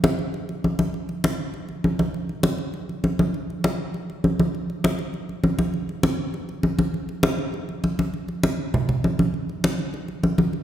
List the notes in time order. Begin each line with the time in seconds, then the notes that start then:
0.04 high conga
0.19 high conga
0.34 high conga
0.49 high conga
0.64 high conga
0.79 high conga
0.94 high conga
1.09 high conga
1.24 high conga
1.54 high conga
1.69 high conga
1.84 high conga
1.99 high conga
2.14 high conga
2.29 high conga
2.43 high conga
2.58 high conga
2.74 high conga
2.89 high conga
3.04 high conga
3.19 high conga
3.34 high conga
3.50 high conga
3.64 high conga
3.94 high conga
4.10 high conga
4.24 high conga
4.39 high conga
4.55 high conga
4.70 high conga
4.84 high conga
4.99 high conga
5.14 high conga
5.29 high conga
5.44 high conga
5.59 high conga
5.74 high conga
5.89 high conga
6.03 high conga
6.34 high conga
6.49 high conga
6.63 high conga
6.79 high conga
6.94 high conga
7.09 high conga
7.23 high conga
7.39 high conga
7.54 high conga
7.69 high conga
7.84 high conga
7.99 high conga
8.14 high conga
8.28 high conga
8.43 high conga
8.74 high conga, low conga
8.89 high conga, low conga
9.04 high conga
9.19 high conga
9.34 high conga
9.49 high conga
9.64 high conga
9.79 high conga
9.94 high conga
10.08 high conga
10.23 high conga
10.38 high conga
10.53 high conga